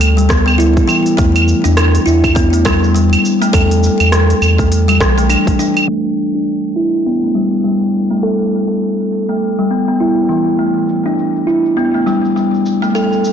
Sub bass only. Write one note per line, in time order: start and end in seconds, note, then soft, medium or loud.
0.00 0.81 D2 medium
1.18 1.54 E2 loud
1.65 1.99 E2 loud
2.07 3.17 E2 medium
3.54 3.89 E2 loud
4.00 4.34 E2 medium
4.42 5.00 E2 medium
5.00 5.36 B1 medium
5.47 5.55 B1 medium